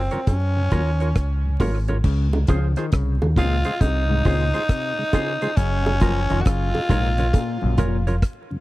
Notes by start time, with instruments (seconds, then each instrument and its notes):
Already playing: tenor saxophone C4
0.11 tonewheel organ F#2 C#3, clean electric guitar F4 A#4 C#5, closed hi-hat
0.27 fingered electric bass F#2, tenor saxophone C#4, kick, closed hi-hat, high bongo
0.57 tonewheel organ F#2 C#3
0.71 fingered electric bass D#2, tonewheel organ F#3 A#3 F4, clean electric guitar F4 A#4 C#5, kick, closed hi-hat
1.00 clean electric guitar F4 A#4 C#5, closed hi-hat
1.15 fingered electric bass C#2, kick, cross-stick, closed hi-hat
1.45 tonewheel organ F#2 C#3
1.60 fingered electric bass G#1, tonewheel organ F#3 A#3 F4, clean electric guitar F4 A#4 C#5, kick, open hi-hat, high bongo, low bongo
1.88 tonewheel organ F#2 C#3, clean electric guitar F4 A#4 C#5, closed hi-hat, high bongo
2.04 fingered electric bass C#2, clav C#3, kick, crash
2.33 tonewheel organ C#3 G#3, high bongo
2.47 fingered electric bass C#2, clav F3, tonewheel organ C4 C#4 F4, clean electric guitar F4 G#4 C5, kick, closed hi-hat
2.76 clav D#3, clean electric guitar F4 G#4 C5, cross-stick, closed hi-hat
2.92 fingered electric bass C2, clav C#3, kick, cross-stick, closed hi-hat
3.21 fingered electric bass D#2, tonewheel organ C#3 G#3, high bongo
3.36 fingered electric bass C#2, clav A#2, tonewheel organ C4 C#4 F4, clean electric guitar F4 G#4 C5, tenor saxophone F4, kick, closed hi-hat, low bongo
3.64 tonewheel organ C#3 G#3, clean electric guitar F4 G#4 C5, closed hi-hat
3.81 fingered electric bass C2, clav C3, tenor saxophone D#4, kick, closed hi-hat, high bongo
4.09 clav G#2, tonewheel organ C#3 G#3
4.24 fingered electric bass C#2, clav A#2, tonewheel organ C4 C#4 F4, clean electric guitar F4 G#4 C5, kick, open hi-hat
4.54 tonewheel organ C#3 G#3, clean electric guitar F4 G#4 C5, closed hi-hat
4.69 clav C3, kick, cross-stick, closed hi-hat
4.98 tonewheel organ C#3 G#3
5.13 clav C#3, tonewheel organ C4 C#4 F4, clean electric guitar F4 G#4 C5, kick, closed hi-hat, high bongo, low bongo
5.42 tonewheel organ C#3 G#3, clean electric guitar F4 G#4 C5, closed hi-hat
5.57 fingered electric bass F#1, clav C#3, tenor saxophone C#4, kick, closed hi-hat
5.86 tonewheel organ F#2 C#3, high bongo
6.00 clav F3, tonewheel organ F#3 A#3 F4, clean electric guitar F4 A#4 C#5, kick, closed hi-hat
6.30 fingered electric bass F1, tonewheel organ F#2 C#3, clav D#3, clean electric guitar F4 A#4 C#5, closed hi-hat
6.41 clav C#3, tenor saxophone F#4, closed hi-hat
6.46 fingered electric bass F#1, tenor saxophone F4, kick, cross-stick
6.74 tonewheel organ F#2 C#3, high bongo
6.89 fingered electric bass A#1, clav G#2, tonewheel organ F#3 A#3 F4, clean electric guitar F4 A#4 C#5, kick, closed hi-hat, low bongo
7.18 tonewheel organ F#2 C#3, clean electric guitar F4 A#4 C#5, closed hi-hat
7.33 clav A#2, kick, closed hi-hat, high bongo
7.62 fingered electric bass A#1, clav F#2, tonewheel organ F#2 C#3
7.77 fingered electric bass F1, clav A#2, tonewheel organ F#3 A#3 F4, clean electric guitar F4 A#4 C#5, kick, closed hi-hat
8.06 tonewheel organ F#2 C#3, clean electric guitar F4 A#4 C#5, closed hi-hat
8.22 kick, cross-stick, closed hi-hat
8.51 tonewheel organ F#2 C#3